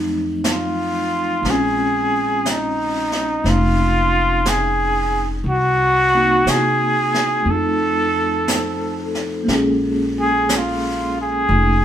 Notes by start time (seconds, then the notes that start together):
Already playing: F2 F#3 A3 C4 D#4
0.44 brush sweep, snare, hi-hat pedal
0.50 F4
1.41 A#1 G#3, brush sweep, snare
1.45 C4 C#4
1.51 F4 G#4
2.46 brush sweep, snare, hi-hat pedal
2.50 D#4
3.12 snare
3.44 F1 C4 D#4, brush sweep, snare
3.50 F4
4.46 G#4, brush sweep, snare, hi-hat pedal
5.44 C2, brush sweep
5.49 F#4
6.15 A#3 C4 D#4 F#4
6.45 C3, brush sweep, snare, hi-hat pedal
6.49 G#4
7.14 snare
7.43 F2 A3 C4
7.48 D#4 A4, brush sweep
7.54 F4
8.48 C5, brush sweep, snare, hi-hat pedal
9.00 A4
9.15 snare
9.44 G#3 A#3
9.48 A#1 C#4 F4, brush sweep, snare
9.55 G#4
10.20 G#4
10.49 brush sweep, snare, hi-hat pedal
10.57 F4
11.22 G#4
11.49 F1 D#4 F4, brush sweep